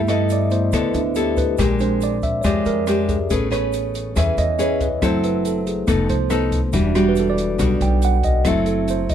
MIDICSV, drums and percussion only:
0, 0, Header, 1, 2, 480
1, 0, Start_track
1, 0, Key_signature, 1, "minor"
1, 0, Tempo, 429492
1, 1770, Time_signature, 4, 2, 24, 8
1, 10223, End_track
2, 0, Start_track
2, 0, Title_t, "Drums"
2, 85, Note_on_c, 9, 82, 26
2, 93, Note_on_c, 9, 37, 57
2, 93, Note_on_c, 9, 42, 41
2, 197, Note_off_c, 9, 82, 0
2, 205, Note_off_c, 9, 37, 0
2, 205, Note_off_c, 9, 42, 0
2, 327, Note_on_c, 9, 82, 61
2, 336, Note_on_c, 9, 42, 45
2, 439, Note_off_c, 9, 82, 0
2, 448, Note_off_c, 9, 42, 0
2, 563, Note_on_c, 9, 82, 24
2, 575, Note_on_c, 9, 42, 42
2, 674, Note_off_c, 9, 82, 0
2, 687, Note_off_c, 9, 42, 0
2, 806, Note_on_c, 9, 82, 67
2, 814, Note_on_c, 9, 36, 57
2, 820, Note_on_c, 9, 37, 59
2, 820, Note_on_c, 9, 42, 58
2, 918, Note_off_c, 9, 82, 0
2, 926, Note_off_c, 9, 36, 0
2, 932, Note_off_c, 9, 37, 0
2, 932, Note_off_c, 9, 42, 0
2, 1050, Note_on_c, 9, 82, 27
2, 1055, Note_on_c, 9, 42, 44
2, 1161, Note_off_c, 9, 82, 0
2, 1167, Note_off_c, 9, 42, 0
2, 1287, Note_on_c, 9, 82, 67
2, 1295, Note_on_c, 9, 42, 43
2, 1399, Note_off_c, 9, 82, 0
2, 1407, Note_off_c, 9, 42, 0
2, 1527, Note_on_c, 9, 82, 28
2, 1534, Note_on_c, 9, 36, 52
2, 1541, Note_on_c, 9, 42, 41
2, 1638, Note_off_c, 9, 82, 0
2, 1645, Note_off_c, 9, 36, 0
2, 1652, Note_off_c, 9, 42, 0
2, 1763, Note_on_c, 9, 82, 63
2, 1774, Note_on_c, 9, 36, 56
2, 1779, Note_on_c, 9, 37, 56
2, 1779, Note_on_c, 9, 42, 59
2, 1875, Note_off_c, 9, 82, 0
2, 1885, Note_off_c, 9, 36, 0
2, 1891, Note_off_c, 9, 37, 0
2, 1891, Note_off_c, 9, 42, 0
2, 2003, Note_on_c, 9, 82, 24
2, 2018, Note_on_c, 9, 42, 38
2, 2114, Note_off_c, 9, 82, 0
2, 2129, Note_off_c, 9, 42, 0
2, 2246, Note_on_c, 9, 82, 61
2, 2256, Note_on_c, 9, 42, 39
2, 2357, Note_off_c, 9, 82, 0
2, 2368, Note_off_c, 9, 42, 0
2, 2482, Note_on_c, 9, 82, 23
2, 2492, Note_on_c, 9, 36, 46
2, 2494, Note_on_c, 9, 42, 35
2, 2594, Note_off_c, 9, 82, 0
2, 2604, Note_off_c, 9, 36, 0
2, 2606, Note_off_c, 9, 42, 0
2, 2716, Note_on_c, 9, 82, 68
2, 2732, Note_on_c, 9, 36, 62
2, 2732, Note_on_c, 9, 37, 53
2, 2732, Note_on_c, 9, 42, 53
2, 2827, Note_off_c, 9, 82, 0
2, 2844, Note_off_c, 9, 36, 0
2, 2844, Note_off_c, 9, 37, 0
2, 2844, Note_off_c, 9, 42, 0
2, 2963, Note_on_c, 9, 82, 25
2, 2973, Note_on_c, 9, 42, 38
2, 3075, Note_off_c, 9, 82, 0
2, 3085, Note_off_c, 9, 42, 0
2, 3206, Note_on_c, 9, 82, 64
2, 3210, Note_on_c, 9, 37, 60
2, 3210, Note_on_c, 9, 42, 40
2, 3318, Note_off_c, 9, 82, 0
2, 3322, Note_off_c, 9, 37, 0
2, 3322, Note_off_c, 9, 42, 0
2, 3451, Note_on_c, 9, 42, 36
2, 3451, Note_on_c, 9, 82, 28
2, 3452, Note_on_c, 9, 36, 52
2, 3562, Note_off_c, 9, 42, 0
2, 3563, Note_off_c, 9, 82, 0
2, 3564, Note_off_c, 9, 36, 0
2, 3689, Note_on_c, 9, 82, 62
2, 3693, Note_on_c, 9, 36, 55
2, 3693, Note_on_c, 9, 42, 53
2, 3801, Note_off_c, 9, 82, 0
2, 3804, Note_off_c, 9, 42, 0
2, 3805, Note_off_c, 9, 36, 0
2, 3931, Note_on_c, 9, 82, 27
2, 3937, Note_on_c, 9, 37, 52
2, 3937, Note_on_c, 9, 42, 41
2, 4043, Note_off_c, 9, 82, 0
2, 4049, Note_off_c, 9, 37, 0
2, 4049, Note_off_c, 9, 42, 0
2, 4166, Note_on_c, 9, 82, 62
2, 4176, Note_on_c, 9, 42, 41
2, 4278, Note_off_c, 9, 82, 0
2, 4288, Note_off_c, 9, 42, 0
2, 4409, Note_on_c, 9, 82, 24
2, 4415, Note_on_c, 9, 42, 44
2, 4521, Note_off_c, 9, 82, 0
2, 4527, Note_off_c, 9, 42, 0
2, 4650, Note_on_c, 9, 82, 66
2, 4654, Note_on_c, 9, 36, 61
2, 4658, Note_on_c, 9, 37, 58
2, 4658, Note_on_c, 9, 42, 63
2, 4761, Note_off_c, 9, 82, 0
2, 4766, Note_off_c, 9, 36, 0
2, 4770, Note_off_c, 9, 37, 0
2, 4770, Note_off_c, 9, 42, 0
2, 4885, Note_on_c, 9, 82, 27
2, 4895, Note_on_c, 9, 42, 44
2, 4997, Note_off_c, 9, 82, 0
2, 5007, Note_off_c, 9, 42, 0
2, 5131, Note_on_c, 9, 82, 62
2, 5132, Note_on_c, 9, 42, 45
2, 5243, Note_off_c, 9, 82, 0
2, 5244, Note_off_c, 9, 42, 0
2, 5371, Note_on_c, 9, 42, 39
2, 5373, Note_on_c, 9, 36, 50
2, 5375, Note_on_c, 9, 82, 29
2, 5483, Note_off_c, 9, 42, 0
2, 5484, Note_off_c, 9, 36, 0
2, 5487, Note_off_c, 9, 82, 0
2, 5612, Note_on_c, 9, 36, 53
2, 5612, Note_on_c, 9, 37, 59
2, 5612, Note_on_c, 9, 42, 52
2, 5614, Note_on_c, 9, 82, 58
2, 5723, Note_off_c, 9, 36, 0
2, 5724, Note_off_c, 9, 37, 0
2, 5724, Note_off_c, 9, 42, 0
2, 5726, Note_off_c, 9, 82, 0
2, 5851, Note_on_c, 9, 42, 40
2, 5860, Note_on_c, 9, 82, 25
2, 5963, Note_off_c, 9, 42, 0
2, 5971, Note_off_c, 9, 82, 0
2, 6090, Note_on_c, 9, 42, 41
2, 6095, Note_on_c, 9, 82, 62
2, 6202, Note_off_c, 9, 42, 0
2, 6207, Note_off_c, 9, 82, 0
2, 6333, Note_on_c, 9, 82, 25
2, 6335, Note_on_c, 9, 42, 41
2, 6445, Note_off_c, 9, 82, 0
2, 6446, Note_off_c, 9, 42, 0
2, 6565, Note_on_c, 9, 82, 61
2, 6569, Note_on_c, 9, 37, 57
2, 6569, Note_on_c, 9, 42, 55
2, 6570, Note_on_c, 9, 36, 60
2, 6677, Note_off_c, 9, 82, 0
2, 6680, Note_off_c, 9, 37, 0
2, 6680, Note_off_c, 9, 42, 0
2, 6682, Note_off_c, 9, 36, 0
2, 6807, Note_on_c, 9, 82, 28
2, 6811, Note_on_c, 9, 42, 42
2, 6919, Note_off_c, 9, 82, 0
2, 6923, Note_off_c, 9, 42, 0
2, 7043, Note_on_c, 9, 82, 65
2, 7044, Note_on_c, 9, 37, 58
2, 7044, Note_on_c, 9, 42, 39
2, 7154, Note_off_c, 9, 82, 0
2, 7156, Note_off_c, 9, 37, 0
2, 7156, Note_off_c, 9, 42, 0
2, 7282, Note_on_c, 9, 82, 28
2, 7287, Note_on_c, 9, 36, 55
2, 7289, Note_on_c, 9, 42, 41
2, 7394, Note_off_c, 9, 82, 0
2, 7399, Note_off_c, 9, 36, 0
2, 7400, Note_off_c, 9, 42, 0
2, 7518, Note_on_c, 9, 82, 63
2, 7525, Note_on_c, 9, 42, 49
2, 7527, Note_on_c, 9, 36, 56
2, 7630, Note_off_c, 9, 82, 0
2, 7637, Note_off_c, 9, 42, 0
2, 7639, Note_off_c, 9, 36, 0
2, 7765, Note_on_c, 9, 82, 25
2, 7770, Note_on_c, 9, 37, 59
2, 7770, Note_on_c, 9, 42, 39
2, 7877, Note_off_c, 9, 82, 0
2, 7882, Note_off_c, 9, 37, 0
2, 7882, Note_off_c, 9, 42, 0
2, 7998, Note_on_c, 9, 82, 64
2, 8011, Note_on_c, 9, 42, 37
2, 8110, Note_off_c, 9, 82, 0
2, 8122, Note_off_c, 9, 42, 0
2, 8243, Note_on_c, 9, 82, 26
2, 8249, Note_on_c, 9, 42, 45
2, 8355, Note_off_c, 9, 82, 0
2, 8361, Note_off_c, 9, 42, 0
2, 8483, Note_on_c, 9, 82, 69
2, 8485, Note_on_c, 9, 36, 59
2, 8486, Note_on_c, 9, 37, 56
2, 8486, Note_on_c, 9, 42, 58
2, 8595, Note_off_c, 9, 82, 0
2, 8597, Note_off_c, 9, 36, 0
2, 8597, Note_off_c, 9, 37, 0
2, 8597, Note_off_c, 9, 42, 0
2, 8726, Note_on_c, 9, 82, 27
2, 8727, Note_on_c, 9, 42, 44
2, 8838, Note_off_c, 9, 82, 0
2, 8839, Note_off_c, 9, 42, 0
2, 8963, Note_on_c, 9, 82, 71
2, 8965, Note_on_c, 9, 42, 45
2, 9075, Note_off_c, 9, 82, 0
2, 9076, Note_off_c, 9, 42, 0
2, 9203, Note_on_c, 9, 36, 50
2, 9203, Note_on_c, 9, 42, 42
2, 9211, Note_on_c, 9, 82, 29
2, 9314, Note_off_c, 9, 42, 0
2, 9315, Note_off_c, 9, 36, 0
2, 9323, Note_off_c, 9, 82, 0
2, 9440, Note_on_c, 9, 37, 56
2, 9440, Note_on_c, 9, 42, 53
2, 9442, Note_on_c, 9, 36, 54
2, 9447, Note_on_c, 9, 82, 66
2, 9552, Note_off_c, 9, 37, 0
2, 9552, Note_off_c, 9, 42, 0
2, 9554, Note_off_c, 9, 36, 0
2, 9559, Note_off_c, 9, 82, 0
2, 9678, Note_on_c, 9, 42, 38
2, 9686, Note_on_c, 9, 82, 24
2, 9790, Note_off_c, 9, 42, 0
2, 9798, Note_off_c, 9, 82, 0
2, 9923, Note_on_c, 9, 42, 45
2, 9924, Note_on_c, 9, 82, 60
2, 10034, Note_off_c, 9, 42, 0
2, 10036, Note_off_c, 9, 82, 0
2, 10162, Note_on_c, 9, 42, 43
2, 10164, Note_on_c, 9, 36, 53
2, 10165, Note_on_c, 9, 82, 23
2, 10223, Note_off_c, 9, 36, 0
2, 10223, Note_off_c, 9, 42, 0
2, 10223, Note_off_c, 9, 82, 0
2, 10223, End_track
0, 0, End_of_file